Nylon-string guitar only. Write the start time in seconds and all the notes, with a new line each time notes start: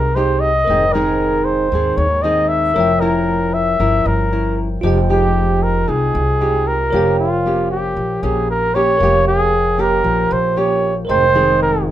Already playing: C3 G#3 D#4 G4
0.16 G#3 D#4 G4
0.69 G#2 D#3 G#3 C4 D#4 G#4
0.94 D#3 G#3 C4 D#4 G#4
1.73 G#2 D#3 G#3 C4 D#4 G#4
2.24 D#3 G#3 C4 D#4 G#4
2.75 F3 C#4 E4 A#4
3.02 C#4 E4 A#4
3.80 F3 C#4 E4 A#4
4.33 C#4 E4 A#4
4.84 F3 G#3 D#4 G4
5.09 G#3 D#4 G4
5.88 C3 G#3 D#4
6.41 G#3 D#4 G4
6.93 F3 A#3 C#4 G4
7.46 A#3 C#4 G4
7.98 F3
8.23 A#3 C#4 G4
8.75 A#3 C#4 G4
9.02 F3 A#3 C#4 G4
9.78 A#3 C#4 G4
10.04 F3
10.56 A#3 C#4 G4
11.08 G#2 D#3 G#3 C4 D#4 G#4
11.35 D#3 G#3 C4 D#4 G#4